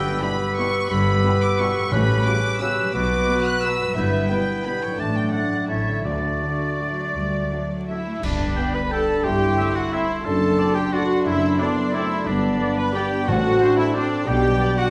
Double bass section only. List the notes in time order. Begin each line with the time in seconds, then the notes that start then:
Already playing: G1
0.91 G1
1.92 A1
2.94 B1
3.96 G1
4.99 A1
5.70 A1
6.05 D2
7.15 D2
8.24 G1
9.24 G1
10.25 F#1
11.26 F#1
12.27 G1
13.28 A1
14.28 B1